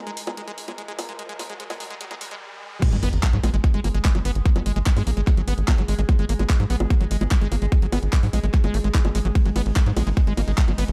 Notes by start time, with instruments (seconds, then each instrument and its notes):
Already playing: synth drone G#3 A#4, riser
0.07 acid bass G#3, closed hi-hat
0.17 open hi-hat
0.27 acid bass G#3, closed hi-hat, high bongo
0.37 acid bass G#3, closed hi-hat
0.47 acid bass G#3, closed hi-hat
0.58 open hi-hat
0.68 acid bass G#3, closed hi-hat, high bongo
0.78 acid bass G#3, closed hi-hat
0.88 acid bass G#3, closed hi-hat
0.99 open hi-hat, high bongo
1.09 acid bass G#3, closed hi-hat
1.19 acid bass G#3, closed hi-hat
1.29 acid bass G#3, closed hi-hat
1.39 acid bass G#3, open hi-hat, high bongo
1.50 acid bass G#3, closed hi-hat
1.60 acid bass G#3, closed hi-hat
1.70 acid bass G#3, open hi-hat, high bongo
1.80 acid bass G#3, open hi-hat
1.90 acid bass G#3, closed hi-hat
2.01 acid bass G#3, closed hi-hat
2.11 acid bass G#3, closed hi-hat, high bongo
2.21 acid bass G#3, open hi-hat
2.31 acid bass G#3, closed hi-hat
2.82 acid bass G#3, synth drone G#3 G#4, kick, closed hi-hat, crash, sub drop
2.92 analog synth bass G#1, acid bass F#3, closed hi-hat
3.03 analog synth bass G#1, acid bass B3, open hi-hat, high bongo
3.13 analog synth bass G#1, closed hi-hat
3.23 acid bass A#3, kick, clap, closed hi-hat
3.33 analog synth bass G#2, acid bass F#3, closed hi-hat
3.43 analog synth bass A#1, acid bass G#3, open hi-hat, high bongo
3.54 analog synth bass G#1, acid bass G#3, closed hi-hat
3.64 acid bass G#3, kick, closed hi-hat
3.74 analog synth bass G#1, acid bass G#3, closed hi-hat
3.84 analog synth bass G#1, acid bass A#3, open hi-hat, high bongo
3.94 analog synth bass G#1, acid bass G#3, closed hi-hat
4.05 acid bass G#3, kick, clap, closed hi-hat
4.15 analog synth bass G#1, acid bass F#3, closed hi-hat, high bongo
4.25 analog synth bass G#1, acid bass B3, open hi-hat
4.35 analog synth bass G#1, closed hi-hat
4.46 acid bass A#3, kick, closed hi-hat
4.56 analog synth bass G#1, acid bass F#3, closed hi-hat, high bongo
4.66 analog synth bass G#1, acid bass G#3, open hi-hat
4.76 analog synth bass G#1, acid bass G#3, closed hi-hat
4.86 acid bass G#3, kick, clap, closed hi-hat
4.97 analog synth bass G#2, acid bass G#3, open hi-hat, high bongo
5.07 analog synth bass A#1, acid bass A#3, open hi-hat
5.17 analog synth bass G#1, acid bass G#3, closed hi-hat
5.27 acid bass G#3, kick, clap, closed hi-hat, high bongo
5.37 analog synth bass G#1, acid bass F#3, closed hi-hat
5.48 analog synth bass G#1, acid bass B3, open hi-hat
5.58 analog synth bass G#1, closed hi-hat
5.68 acid bass A#3, kick, clap, closed hi-hat, high bongo
5.78 analog synth bass G#1, acid bass F#3, closed hi-hat
5.88 analog synth bass G#1, acid bass G#3, open hi-hat
5.99 analog synth bass G#1, acid bass G#3, closed hi-hat
6.09 acid bass G#3, kick, closed hi-hat, high bongo
6.19 analog synth bass G#1, acid bass G#3, closed hi-hat
6.29 analog synth bass G#1, acid bass A#3, open hi-hat
6.39 analog synth bass G#1, acid bass G#3, closed hi-hat, high bongo
6.50 acid bass G#3, kick, clap, closed hi-hat
6.60 analog synth bass G#2, acid bass F#3, closed hi-hat
6.70 analog synth bass A#1, acid bass B3, open hi-hat
6.80 analog synth bass G#1, closed hi-hat, high bongo
6.90 acid bass A#3, kick, closed hi-hat
7.01 analog synth bass G#1, acid bass F#3, closed hi-hat
7.11 analog synth bass G#1, acid bass G#3, open hi-hat
7.21 analog synth bass G#1, acid bass G#3, closed hi-hat, high bongo
7.31 acid bass G#3, kick, clap, closed hi-hat
7.41 analog synth bass G#1, acid bass G#3, closed hi-hat
7.52 analog synth bass G#1, acid bass A#3, open hi-hat, high bongo
7.62 analog synth bass G#1, acid bass G#3, closed hi-hat
7.72 acid bass G#3, kick, closed hi-hat
7.82 analog synth bass G#1, acid bass F#3, closed hi-hat
7.92 analog synth bass G#1, acid bass B3, open hi-hat, high bongo
8.03 analog synth bass G#1, closed hi-hat
8.13 acid bass A#3, kick, clap, closed hi-hat
8.23 analog synth bass G#2, acid bass F#3, open hi-hat
8.33 analog synth bass A#1, acid bass G#3, open hi-hat, high bongo
8.43 analog synth bass G#1, acid bass G#3, closed hi-hat
8.54 acid bass G#3, kick, clap, closed hi-hat
8.64 analog synth bass G#1, acid bass G#3, closed hi-hat, high bongo
8.74 analog synth bass G#1, acid bass A#3, open hi-hat
8.84 analog synth bass G#1, acid bass G#3, closed hi-hat
8.94 acid bass D#4, kick, clap, closed hi-hat
9.05 analog synth bass G#1, acid bass G#3, closed hi-hat, high bongo
9.15 analog synth bass G#1, acid bass G#3, open hi-hat
9.25 analog synth bass G#1, acid bass F#3, closed hi-hat
9.35 acid bass G#3, synth drone D#4, kick, closed hi-hat, ride
9.45 analog synth bass G#1, acid bass F#3, closed hi-hat
9.56 analog synth bass G#1, acid bass B3, open hi-hat, ride, high bongo
9.66 analog synth bass G#1
9.76 acid bass A#3, kick, clap, closed hi-hat, ride
9.86 analog synth bass G#2, acid bass F#3, closed hi-hat
9.97 analog synth bass A#1, acid bass G#3, open hi-hat, ride, high bongo
10.07 analog synth bass G#1, acid bass G#3, closed hi-hat
10.17 acid bass G#3, kick, closed hi-hat, ride
10.27 analog synth bass G#1, acid bass G#3, closed hi-hat
10.37 analog synth bass G#1, acid bass A#3, open hi-hat, ride, high bongo
10.48 analog synth bass G#1, acid bass G#3, closed hi-hat
10.58 acid bass G#3, kick, clap, closed hi-hat, ride
10.68 analog synth bass G#1, acid bass F#3, closed hi-hat, high bongo
10.78 analog synth bass G#1, acid bass B3, open hi-hat, ride
10.88 analog synth bass G#1, closed hi-hat